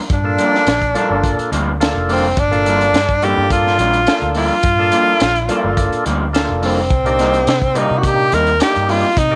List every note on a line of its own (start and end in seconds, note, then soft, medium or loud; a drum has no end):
0.10 0.37 G2 medium
0.10 1.78 D4 loud
0.10 kick loud
0.10 closed hi-hat medium
0.24 0.70 A#3 medium
0.24 0.70 D4 medium
0.24 0.71 F4 medium
0.24 0.71 A4 medium
0.38 0.56 G2 medium
0.38 0.57 F3 medium
0.38 0.57 A#3 medium
0.38 0.57 D4 medium
0.38 closed hi-hat medium
0.55 snare soft
0.67 0.94 A#1 medium
0.67 snare loud
0.67 closed hi-hat medium
0.82 kick medium
0.82 closed hi-hat soft
0.94 1.13 G2 medium
0.94 1.13 F3 medium
0.94 1.50 A#3 medium
0.94 1.13 A#3 medium
0.94 1.51 D4 medium
0.94 1.13 D4 medium
0.94 1.51 F4 medium
0.94 1.51 A4 medium
0.94 closed hi-hat medium
1.10 1.37 G1 medium
1.24 kick medium
1.24 closed hi-hat medium
1.39 closed hi-hat soft
1.52 1.97 D2 medium
1.52 1.70 G2 medium
1.52 1.70 F3 medium
1.52 1.70 A#3 medium
1.52 1.70 D4 medium
1.52 closed hi-hat medium
1.80 2.27 A#3 medium
1.80 2.27 D4 medium
1.80 2.27 F4 medium
1.80 2.28 A4 loud
1.80 snare loud
1.80 closed hi-hat medium
1.95 2.35 F1 medium
2.09 2.26 G2 medium
2.09 2.27 F3 medium
2.09 2.27 A#3 medium
2.09 2.41 C4 medium
2.09 2.27 D4 medium
2.09 open hi-hat medium
2.37 2.91 G1 loud
2.37 3.26 D4 loud
2.37 kick loud
2.37 closed hi-hat medium
2.51 2.97 A#3 medium
2.51 2.97 D4 medium
2.51 2.98 F4 medium
2.51 2.98 A4 medium
2.51 closed hi-hat soft
2.66 2.83 G2 medium
2.66 2.84 F3 medium
2.66 2.84 A#3 medium
2.66 2.84 D4 medium
2.66 closed hi-hat medium
2.81 closed hi-hat soft
2.93 3.34 G2 medium
2.93 snare loud
2.93 closed hi-hat medium
3.09 kick medium
3.09 closed hi-hat soft
3.22 3.40 G2 medium
3.22 3.40 F3 medium
3.22 3.78 A#3 medium
3.22 3.41 A#3 medium
3.22 3.78 D4 medium
3.22 3.41 D4 medium
3.22 3.78 F4 medium
3.22 3.52 G4 medium
3.22 3.78 A4 medium
3.22 closed hi-hat medium
3.37 3.77 G2 medium
3.50 4.33 F4 medium
3.50 kick medium
3.50 closed hi-hat medium
3.67 snare soft
3.78 4.05 A#1 medium
3.78 3.97 G2 medium
3.78 3.97 F3 medium
3.78 3.97 A#3 medium
3.78 3.98 D4 medium
3.78 closed hi-hat medium
3.93 closed hi-hat soft
4.07 4.54 A#3 medium
4.07 4.54 D4 medium
4.07 4.54 F4 medium
4.07 4.55 A4 medium
4.07 snare loud
4.07 closed hi-hat medium
4.21 4.49 D2 medium
4.21 closed hi-hat soft
4.34 4.53 G2 medium
4.34 4.53 F3 medium
4.34 4.54 A#3 medium
4.34 4.54 D4 medium
4.34 6.03 F4 loud
4.34 open hi-hat medium
4.63 4.91 G2 medium
4.63 kick loud
4.63 closed hi-hat medium
4.78 5.24 A#3 medium
4.78 5.25 D4 medium
4.78 5.25 F4 medium
4.78 5.25 A4 medium
4.92 5.10 G2 medium
4.92 5.10 F3 medium
4.92 5.10 A#3 medium
4.92 5.10 D4 medium
4.92 closed hi-hat medium
5.20 5.48 A#1 medium
5.20 snare loud
5.20 closed hi-hat medium
5.35 closed hi-hat soft
5.48 5.66 G2 medium
5.48 5.67 F3 medium
5.48 6.04 A#3 medium
5.48 5.67 A#3 medium
5.48 6.04 D4 medium
5.48 5.67 D4 medium
5.48 6.05 F4 medium
5.48 6.05 A4 loud
5.48 closed hi-hat medium
5.64 5.91 G1 medium
5.77 kick medium
5.77 closed hi-hat medium
5.92 muted fingered electric bass stroke soft
5.92 closed hi-hat soft
6.05 6.51 D2 medium
6.05 6.23 G2 medium
6.05 6.24 F3 medium
6.05 6.24 A#3 medium
6.05 6.24 D4 medium
6.05 closed hi-hat medium
6.33 6.80 A#3 medium
6.33 6.81 D4 medium
6.33 6.81 F4 medium
6.33 6.81 A4 medium
6.33 snare loud
6.33 closed hi-hat medium
6.49 6.89 F1 medium
6.62 6.80 G2 medium
6.62 6.80 F3 medium
6.62 6.81 A#3 medium
6.62 7.80 C4 medium
6.62 6.81 D4 medium
6.62 open hi-hat medium
6.90 7.44 C2 medium
6.90 kick loud
6.90 closed hi-hat medium
7.05 7.51 A#3 medium
7.05 7.51 D4 medium
7.05 7.52 D#4 medium
7.05 7.52 G4 medium
7.05 closed hi-hat soft
7.18 7.36 C3 medium
7.18 7.37 G3 medium
7.18 7.37 A#3 medium
7.18 7.37 D#4 medium
7.18 snare soft
7.18 closed hi-hat medium
7.34 closed hi-hat soft
7.47 7.88 C3 medium
7.47 snare loud
7.47 closed hi-hat medium
7.62 kick medium
7.62 closed hi-hat soft
7.75 7.93 C3 medium
7.75 7.93 G3 medium
7.75 8.31 A#3 medium
7.75 7.94 A#3 medium
7.75 8.31 D4 medium
7.75 8.31 D#4 medium
7.75 7.94 D#4 medium
7.75 8.00 D#4 medium
7.75 8.31 G4 medium
7.75 closed hi-hat medium
7.91 8.30 C3 medium
7.98 8.08 F#4 medium
8.03 8.35 G4 loud
8.03 kick medium
8.03 closed hi-hat medium
8.32 8.59 D#2 loud
8.32 8.50 C3 medium
8.32 8.50 G3 medium
8.32 8.50 A#3 medium
8.32 8.50 D#4 medium
8.32 8.61 A#4 loud
8.32 closed hi-hat medium
8.47 closed hi-hat soft
8.60 9.07 A#3 medium
8.60 9.07 D4 medium
8.60 9.07 D#4 medium
8.60 9.07 G4 medium
8.60 8.92 G4 medium
8.60 snare loud
8.60 closed hi-hat medium
8.76 9.03 G2 medium
8.76 closed hi-hat soft
8.88 9.06 C3 medium
8.88 9.07 G3 medium
8.88 9.07 A#3 medium
8.88 9.07 D#4 medium
8.88 9.20 F4 medium
8.88 open hi-hat medium
9.17 9.35 C3 medium
9.17 9.35 D#4 loud
9.17 kick loud
9.17 closed hi-hat medium
9.31 9.35 A#3 medium
9.31 9.35 D#4 medium
9.31 9.35 D5 medium